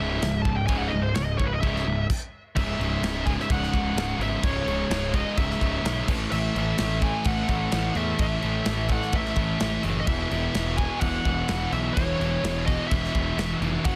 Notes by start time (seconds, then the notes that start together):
Already playing: C#2 G#2 C#3 E5
0.00 C#1
0.21 C#1 C#2 G#2, snare, crash
0.42 C#1 C#2 G#2 A5, kick
0.57 G5
0.67 C#1 C#2 G#2 C#3 G#5, kick, crash
0.78 F#5
0.88 D#5
0.92 C#1 C#2 G#2
1.02 C5
1.15 C#1 C#2 G#2 C#5, snare, crash
1.25 D#5
1.38 C#1 C#2 G#2 C#5, kick
1.45 B4
1.53 D#5
1.61 C#1 C#2 G#2 C#3 E5, kick, crash
1.76 snare
1.86 C#1 C#2 G#2
2.10 kick, crash
2.55 C#1 C#2 G#2 C#3 E5, kick, crash
2.79 C#1 C#2 G#2 C#3, crash
3.02 C#1 C#2 G#2 C#3, snare, crash
3.26 C#2 G#2 C#3 G#5, kick, crash
3.40 E5, snare
3.50 C#1 C#2 G#2 C#3 F#5, kick, crash
3.63 snare
3.72 C#1 C#2 G#2 C#3, kick, crash
3.95 C#1 C#2 G#2 C#3, snare, crash
4.19 G#1 C#2 G#2 C#3, crash
4.23 E5
4.42 C#1 C#2 G#2 C#3 C#5, kick, crash
4.66 C#1 C#2 G#2 C#3, crash
4.90 C#1 C#2 G#2 C#3, snare, crash
5.13 C#2 G#2 C#3 D#5, kick, crash
5.37 C#1 C#2 G#2 C#3 E5, kick, crash
5.51 snare
5.60 C#1 C#2 G#2 C#3, kick, crash
5.83 B1 C#2 G#2 C#3, snare, crash
6.07 A1 A2 E3 A3, kick, crash
6.31 A1 A2 E3 A3 E5, crash
6.55 A1 A2 E3 A3, crash
6.77 A1 A2 E3 A3, snare, crash
7.01 A2 E3 A3 G#5, kick, crash
7.24 A1 A2 E3 A3 F#5, kick, crash
7.48 A1 A2 E3 A3, kick, crash
7.72 A1 A2 E3 A3, snare, crash
7.95 E2 A2 E3 A3 E5, crash
8.18 A1 A2 E3 A3 E5, kick, crash
8.42 A1 A2 E3 A3, crash
8.65 A1 A2 E3 A3, snare, crash
8.88 A2 E3 A3 F#5, kick, crash
9.02 snare
9.12 A1 A2 E3 A3 E5, kick, crash
9.25 snare
9.36 A1 A2 E3 A3, kick, crash
9.59 A1 A2 E3 A3, snare, crash
9.83 F#1 A2 E3 A3, crash
10.00 D#5
10.07 E1 E2 B2 E3 E5, kick, crash
10.31 E1 E2 B2 E3, crash
10.54 E1 E2 B2 E3, snare, crash
10.77 E2 B2 E3 G#5, kick, crash
11.01 E1 E2 B2 E3 F#5, kick, crash
11.25 E1 E2 B2 E3, kick, crash
11.48 E1 E2 B2 E3, snare, crash
11.72 B1 E2 B2 E3 E5, crash
11.94 E1 E2 B2 E3 C#5, kick, crash
12.19 E1 E2 B2 E3, crash
12.43 E1 E2 B2 E3, snare, crash
12.66 E2 B2 E3 D#5, kick, crash
12.87 E2 E5
12.91 E1 B2 E3, kick, crash
13.04 snare
13.15 E1 E2 B2 E3, kick, crash
13.37 E1 E2 B2 E3, snare, crash
13.60 F1 E2 B2 E3, crash
13.84 F#1 F#2 C#3 F#3 F#5, kick, crash